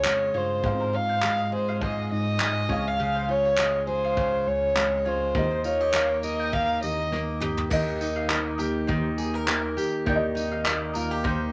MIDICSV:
0, 0, Header, 1, 7, 480
1, 0, Start_track
1, 0, Tempo, 589391
1, 521, Time_signature, 4, 2, 24, 8
1, 9384, End_track
2, 0, Start_track
2, 0, Title_t, "Mandolin"
2, 0, Program_c, 0, 25
2, 280, Note_on_c, 0, 73, 59
2, 406, Note_off_c, 0, 73, 0
2, 651, Note_on_c, 0, 70, 53
2, 755, Note_off_c, 0, 70, 0
2, 888, Note_on_c, 0, 72, 64
2, 993, Note_off_c, 0, 72, 0
2, 1000, Note_on_c, 0, 75, 67
2, 1126, Note_off_c, 0, 75, 0
2, 1373, Note_on_c, 0, 77, 64
2, 1700, Note_off_c, 0, 77, 0
2, 2195, Note_on_c, 0, 73, 67
2, 2324, Note_off_c, 0, 73, 0
2, 2562, Note_on_c, 0, 72, 56
2, 2671, Note_off_c, 0, 72, 0
2, 2812, Note_on_c, 0, 73, 69
2, 2916, Note_off_c, 0, 73, 0
2, 2920, Note_on_c, 0, 75, 74
2, 3046, Note_off_c, 0, 75, 0
2, 3294, Note_on_c, 0, 77, 67
2, 3621, Note_off_c, 0, 77, 0
2, 4113, Note_on_c, 0, 73, 67
2, 4243, Note_off_c, 0, 73, 0
2, 4486, Note_on_c, 0, 72, 63
2, 4592, Note_off_c, 0, 72, 0
2, 4727, Note_on_c, 0, 75, 66
2, 4833, Note_off_c, 0, 75, 0
2, 4840, Note_on_c, 0, 77, 73
2, 4967, Note_off_c, 0, 77, 0
2, 5206, Note_on_c, 0, 79, 69
2, 5537, Note_off_c, 0, 79, 0
2, 6038, Note_on_c, 0, 75, 70
2, 6165, Note_off_c, 0, 75, 0
2, 6280, Note_on_c, 0, 79, 83
2, 6407, Note_off_c, 0, 79, 0
2, 6644, Note_on_c, 0, 77, 72
2, 6750, Note_on_c, 0, 75, 77
2, 6751, Note_off_c, 0, 77, 0
2, 6983, Note_off_c, 0, 75, 0
2, 6987, Note_on_c, 0, 70, 65
2, 7119, Note_off_c, 0, 70, 0
2, 7226, Note_on_c, 0, 72, 80
2, 7359, Note_off_c, 0, 72, 0
2, 7604, Note_on_c, 0, 70, 76
2, 7703, Note_off_c, 0, 70, 0
2, 7713, Note_on_c, 0, 70, 81
2, 8066, Note_off_c, 0, 70, 0
2, 8196, Note_on_c, 0, 79, 88
2, 8324, Note_off_c, 0, 79, 0
2, 8563, Note_on_c, 0, 77, 70
2, 8666, Note_on_c, 0, 75, 78
2, 8670, Note_off_c, 0, 77, 0
2, 8901, Note_off_c, 0, 75, 0
2, 8905, Note_on_c, 0, 70, 72
2, 9038, Note_off_c, 0, 70, 0
2, 9153, Note_on_c, 0, 72, 77
2, 9282, Note_off_c, 0, 72, 0
2, 9384, End_track
3, 0, Start_track
3, 0, Title_t, "Violin"
3, 0, Program_c, 1, 40
3, 0, Note_on_c, 1, 73, 98
3, 297, Note_on_c, 1, 72, 86
3, 309, Note_off_c, 1, 73, 0
3, 772, Note_on_c, 1, 77, 101
3, 784, Note_off_c, 1, 72, 0
3, 1247, Note_off_c, 1, 77, 0
3, 1260, Note_on_c, 1, 72, 87
3, 1474, Note_off_c, 1, 72, 0
3, 1490, Note_on_c, 1, 75, 81
3, 1709, Note_off_c, 1, 75, 0
3, 1728, Note_on_c, 1, 75, 106
3, 2343, Note_on_c, 1, 77, 92
3, 2356, Note_off_c, 1, 75, 0
3, 2685, Note_off_c, 1, 77, 0
3, 2689, Note_on_c, 1, 73, 98
3, 3133, Note_off_c, 1, 73, 0
3, 3161, Note_on_c, 1, 72, 89
3, 3646, Note_on_c, 1, 73, 95
3, 3658, Note_off_c, 1, 72, 0
3, 4129, Note_on_c, 1, 72, 90
3, 4141, Note_off_c, 1, 73, 0
3, 4602, Note_off_c, 1, 72, 0
3, 4607, Note_on_c, 1, 73, 94
3, 5052, Note_off_c, 1, 73, 0
3, 5087, Note_on_c, 1, 75, 92
3, 5316, Note_on_c, 1, 77, 99
3, 5328, Note_off_c, 1, 75, 0
3, 5559, Note_off_c, 1, 77, 0
3, 5565, Note_on_c, 1, 75, 93
3, 6011, Note_off_c, 1, 75, 0
3, 9384, End_track
4, 0, Start_track
4, 0, Title_t, "Felt piano"
4, 0, Program_c, 2, 0
4, 0, Control_c, 2, 64, 127
4, 0, Note_on_c, 2, 61, 60
4, 0, Note_on_c, 2, 68, 55
4, 478, Note_off_c, 2, 61, 0
4, 487, Note_off_c, 2, 68, 0
4, 507, Note_on_c, 2, 59, 50
4, 523, Note_on_c, 2, 68, 61
4, 531, Control_c, 2, 64, 0
4, 536, Note_on_c, 2, 77, 68
4, 560, Note_on_c, 2, 60, 64
4, 572, Note_off_c, 2, 59, 0
4, 663, Control_c, 2, 64, 127
4, 2170, Note_off_c, 2, 68, 0
4, 2177, Note_off_c, 2, 77, 0
4, 2188, Note_on_c, 2, 61, 64
4, 2189, Note_off_c, 2, 60, 0
4, 2201, Note_on_c, 2, 68, 57
4, 2213, Control_c, 2, 64, 0
4, 2219, Note_on_c, 2, 77, 68
4, 2375, Control_c, 2, 64, 127
4, 3843, Note_off_c, 2, 61, 0
4, 3850, Note_off_c, 2, 68, 0
4, 3859, Note_off_c, 2, 77, 0
4, 3870, Note_on_c, 2, 61, 46
4, 3880, Note_on_c, 2, 68, 42
4, 3890, Note_on_c, 2, 77, 51
4, 4349, Note_on_c, 2, 58, 65
4, 4356, Note_off_c, 2, 61, 0
4, 4361, Note_off_c, 2, 68, 0
4, 4364, Note_on_c, 2, 67, 63
4, 4366, Note_off_c, 2, 77, 0
4, 4374, Control_c, 2, 64, 0
4, 4383, Note_on_c, 2, 75, 67
4, 4524, Control_c, 2, 64, 127
4, 5531, Note_off_c, 2, 58, 0
4, 5539, Note_off_c, 2, 67, 0
4, 5546, Note_on_c, 2, 58, 47
4, 5549, Note_off_c, 2, 75, 0
4, 5556, Note_on_c, 2, 67, 41
4, 5565, Note_on_c, 2, 70, 48
4, 6252, Note_off_c, 2, 58, 0
4, 6264, Note_on_c, 2, 58, 76
4, 6266, Note_off_c, 2, 67, 0
4, 6278, Note_on_c, 2, 67, 71
4, 6283, Note_off_c, 2, 70, 0
4, 6291, Control_c, 2, 64, 0
4, 6296, Note_on_c, 2, 75, 86
4, 6449, Control_c, 2, 64, 127
4, 8159, Note_off_c, 2, 58, 0
4, 8166, Note_off_c, 2, 67, 0
4, 8175, Note_off_c, 2, 75, 0
4, 8186, Note_on_c, 2, 58, 81
4, 8202, Note_on_c, 2, 67, 78
4, 8220, Note_on_c, 2, 74, 74
4, 8269, Note_off_c, 2, 74, 0
4, 8272, Note_on_c, 2, 75, 92
4, 9368, Note_off_c, 2, 58, 0
4, 9376, Note_off_c, 2, 67, 0
4, 9384, Note_off_c, 2, 75, 0
4, 9384, End_track
5, 0, Start_track
5, 0, Title_t, "Steel-string acoustic guitar"
5, 0, Program_c, 3, 25
5, 0, Note_on_c, 3, 49, 74
5, 0, Note_on_c, 3, 65, 52
5, 0, Note_on_c, 3, 68, 58
5, 31, Note_on_c, 3, 56, 58
5, 273, Note_off_c, 3, 65, 0
5, 277, Note_on_c, 3, 65, 56
5, 516, Note_on_c, 3, 44, 69
5, 570, Note_off_c, 3, 49, 0
5, 755, Note_off_c, 3, 65, 0
5, 758, Note_on_c, 3, 65, 50
5, 997, Note_off_c, 3, 56, 0
5, 1000, Note_on_c, 3, 56, 62
5, 1235, Note_off_c, 3, 68, 0
5, 1238, Note_on_c, 3, 68, 62
5, 1475, Note_off_c, 3, 44, 0
5, 1484, Note_on_c, 3, 44, 73
5, 1948, Note_off_c, 3, 56, 0
5, 1951, Note_on_c, 3, 56, 64
5, 2190, Note_on_c, 3, 49, 73
5, 2256, Note_off_c, 3, 44, 0
5, 2430, Note_off_c, 3, 49, 0
5, 2440, Note_on_c, 3, 49, 77
5, 2672, Note_off_c, 3, 65, 0
5, 2676, Note_on_c, 3, 65, 51
5, 2910, Note_off_c, 3, 56, 0
5, 2914, Note_on_c, 3, 56, 64
5, 3150, Note_off_c, 3, 68, 0
5, 3153, Note_on_c, 3, 68, 68
5, 3389, Note_off_c, 3, 49, 0
5, 3399, Note_on_c, 3, 49, 77
5, 3863, Note_off_c, 3, 56, 0
5, 3873, Note_on_c, 3, 56, 69
5, 4108, Note_off_c, 3, 65, 0
5, 4118, Note_on_c, 3, 65, 62
5, 4353, Note_off_c, 3, 49, 0
5, 4356, Note_on_c, 3, 51, 75
5, 4410, Note_off_c, 3, 56, 0
5, 4411, Note_off_c, 3, 68, 0
5, 4413, Note_off_c, 3, 65, 0
5, 4600, Note_on_c, 3, 65, 55
5, 4728, Note_off_c, 3, 65, 0
5, 4728, Note_on_c, 3, 67, 51
5, 4831, Note_on_c, 3, 58, 72
5, 5079, Note_on_c, 3, 70, 66
5, 5316, Note_off_c, 3, 51, 0
5, 5319, Note_on_c, 3, 51, 80
5, 5797, Note_off_c, 3, 58, 0
5, 5800, Note_on_c, 3, 58, 66
5, 6019, Note_off_c, 3, 67, 0
5, 6029, Note_on_c, 3, 67, 60
5, 6270, Note_off_c, 3, 51, 0
5, 6273, Note_on_c, 3, 51, 74
5, 6521, Note_on_c, 3, 63, 52
5, 6760, Note_off_c, 3, 58, 0
5, 6764, Note_on_c, 3, 58, 69
5, 6990, Note_off_c, 3, 67, 0
5, 6993, Note_on_c, 3, 67, 66
5, 7231, Note_off_c, 3, 51, 0
5, 7234, Note_on_c, 3, 51, 82
5, 7471, Note_off_c, 3, 70, 0
5, 7474, Note_on_c, 3, 68, 61
5, 7615, Note_off_c, 3, 68, 0
5, 7615, Note_on_c, 3, 70, 55
5, 7706, Note_off_c, 3, 58, 0
5, 7716, Note_on_c, 3, 58, 70
5, 7945, Note_off_c, 3, 67, 0
5, 7955, Note_on_c, 3, 67, 63
5, 8191, Note_off_c, 3, 51, 0
5, 8194, Note_on_c, 3, 51, 84
5, 8425, Note_off_c, 3, 63, 0
5, 8428, Note_on_c, 3, 63, 57
5, 8674, Note_off_c, 3, 58, 0
5, 8684, Note_on_c, 3, 58, 74
5, 8917, Note_off_c, 3, 67, 0
5, 8925, Note_on_c, 3, 65, 66
5, 9047, Note_off_c, 3, 65, 0
5, 9047, Note_on_c, 3, 67, 57
5, 9150, Note_off_c, 3, 51, 0
5, 9153, Note_on_c, 3, 51, 83
5, 9382, Note_off_c, 3, 70, 0
5, 9384, Note_off_c, 3, 51, 0
5, 9384, Note_off_c, 3, 58, 0
5, 9384, Note_off_c, 3, 63, 0
5, 9384, Note_off_c, 3, 67, 0
5, 9384, End_track
6, 0, Start_track
6, 0, Title_t, "Tine electric piano"
6, 0, Program_c, 4, 4
6, 42, Note_on_c, 4, 41, 80
6, 263, Note_off_c, 4, 41, 0
6, 275, Note_on_c, 4, 43, 77
6, 499, Note_off_c, 4, 43, 0
6, 517, Note_on_c, 4, 44, 84
6, 1687, Note_off_c, 4, 44, 0
6, 1728, Note_on_c, 4, 44, 94
6, 2173, Note_off_c, 4, 44, 0
6, 2193, Note_on_c, 4, 37, 78
6, 3605, Note_off_c, 4, 37, 0
6, 3637, Note_on_c, 4, 37, 92
6, 3860, Note_off_c, 4, 37, 0
6, 3871, Note_on_c, 4, 37, 72
6, 4097, Note_off_c, 4, 37, 0
6, 4117, Note_on_c, 4, 37, 75
6, 4340, Note_off_c, 4, 37, 0
6, 4359, Note_on_c, 4, 39, 99
6, 5528, Note_off_c, 4, 39, 0
6, 5564, Note_on_c, 4, 39, 108
6, 6250, Note_off_c, 4, 39, 0
6, 6280, Note_on_c, 4, 39, 95
6, 6968, Note_off_c, 4, 39, 0
6, 7001, Note_on_c, 4, 39, 99
6, 7222, Note_off_c, 4, 39, 0
6, 7238, Note_on_c, 4, 39, 104
6, 7927, Note_off_c, 4, 39, 0
6, 8197, Note_on_c, 4, 39, 90
6, 8886, Note_off_c, 4, 39, 0
6, 8926, Note_on_c, 4, 39, 84
6, 9144, Note_off_c, 4, 39, 0
6, 9158, Note_on_c, 4, 39, 105
6, 9384, Note_off_c, 4, 39, 0
6, 9384, End_track
7, 0, Start_track
7, 0, Title_t, "Drums"
7, 37, Note_on_c, 9, 39, 91
7, 118, Note_off_c, 9, 39, 0
7, 519, Note_on_c, 9, 36, 106
7, 600, Note_off_c, 9, 36, 0
7, 997, Note_on_c, 9, 39, 84
7, 1079, Note_off_c, 9, 39, 0
7, 1478, Note_on_c, 9, 36, 99
7, 1560, Note_off_c, 9, 36, 0
7, 1954, Note_on_c, 9, 39, 92
7, 2036, Note_off_c, 9, 39, 0
7, 2195, Note_on_c, 9, 36, 97
7, 2277, Note_off_c, 9, 36, 0
7, 2911, Note_on_c, 9, 39, 86
7, 2993, Note_off_c, 9, 39, 0
7, 3397, Note_on_c, 9, 36, 101
7, 3478, Note_off_c, 9, 36, 0
7, 3882, Note_on_c, 9, 39, 95
7, 3963, Note_off_c, 9, 39, 0
7, 4356, Note_on_c, 9, 36, 112
7, 4438, Note_off_c, 9, 36, 0
7, 4595, Note_on_c, 9, 54, 62
7, 4677, Note_off_c, 9, 54, 0
7, 4835, Note_on_c, 9, 39, 92
7, 4917, Note_off_c, 9, 39, 0
7, 5075, Note_on_c, 9, 54, 61
7, 5156, Note_off_c, 9, 54, 0
7, 5319, Note_on_c, 9, 36, 105
7, 5401, Note_off_c, 9, 36, 0
7, 5558, Note_on_c, 9, 54, 62
7, 5640, Note_off_c, 9, 54, 0
7, 5799, Note_on_c, 9, 38, 52
7, 5881, Note_off_c, 9, 38, 0
7, 6037, Note_on_c, 9, 45, 85
7, 6119, Note_off_c, 9, 45, 0
7, 6167, Note_on_c, 9, 43, 87
7, 6249, Note_off_c, 9, 43, 0
7, 6277, Note_on_c, 9, 49, 94
7, 6280, Note_on_c, 9, 36, 113
7, 6358, Note_off_c, 9, 49, 0
7, 6361, Note_off_c, 9, 36, 0
7, 6523, Note_on_c, 9, 54, 62
7, 6604, Note_off_c, 9, 54, 0
7, 6758, Note_on_c, 9, 39, 91
7, 6840, Note_off_c, 9, 39, 0
7, 6999, Note_on_c, 9, 54, 68
7, 7081, Note_off_c, 9, 54, 0
7, 7240, Note_on_c, 9, 36, 105
7, 7321, Note_off_c, 9, 36, 0
7, 7477, Note_on_c, 9, 54, 61
7, 7558, Note_off_c, 9, 54, 0
7, 7720, Note_on_c, 9, 39, 101
7, 7801, Note_off_c, 9, 39, 0
7, 7964, Note_on_c, 9, 54, 63
7, 8045, Note_off_c, 9, 54, 0
7, 8200, Note_on_c, 9, 36, 113
7, 8281, Note_off_c, 9, 36, 0
7, 8443, Note_on_c, 9, 54, 65
7, 8525, Note_off_c, 9, 54, 0
7, 8679, Note_on_c, 9, 39, 93
7, 8761, Note_off_c, 9, 39, 0
7, 8918, Note_on_c, 9, 54, 70
7, 8999, Note_off_c, 9, 54, 0
7, 9161, Note_on_c, 9, 36, 113
7, 9242, Note_off_c, 9, 36, 0
7, 9384, End_track
0, 0, End_of_file